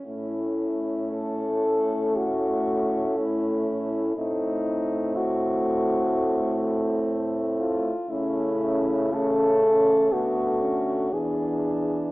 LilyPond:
<<
  \new Staff \with { instrumentName = "French horn" } { \time 4/4 \key a \major \tempo 4 = 60 e'4 a'4 fis'4 e'4 | ees'4 fis'2 r8 f'8 | e'4 a'4 fis'4 gis'4 | }
  \new Staff \with { instrumentName = "French horn" } { \time 4/4 \key a \major cis'1 | c'1 | cis'4 cis'4 b8 cis'8 d'4 | }
  \new Staff \with { instrumentName = "French horn" } { \time 4/4 \key a \major a1 | a1 | a4 a4 a4 e4 | }
  \new Staff \with { instrumentName = "French horn" } { \clef bass \time 4/4 \key a \major a,1 | a,1 | cis2 d4 e,4 | }
>>